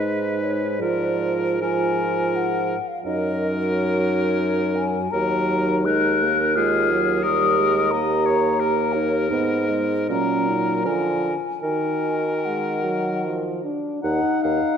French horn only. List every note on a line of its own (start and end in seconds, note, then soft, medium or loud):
0.00 0.83 G#3 soft
0.81 1.61 F3 soft
1.61 2.76 F3 soft
3.05 5.07 F#3 soft
5.11 5.87 F#3 soft
5.86 6.25 G#3 soft
6.23 6.60 A#3 soft
6.58 6.90 G#3 soft
6.91 7.26 F#3 soft
7.24 7.61 G3 soft
7.59 7.94 G#3 soft
7.93 9.30 A#3 soft
9.31 9.70 B3 soft
9.69 10.12 G#3 soft
10.10 10.90 F#3 soft
10.88 11.36 F3 soft
11.65 12.33 D#3 soft
12.46 12.86 G#3 soft
12.84 13.26 F#3 soft
13.25 13.64 F3 soft
13.64 14.00 D4 soft
14.03 14.77 D#4 medium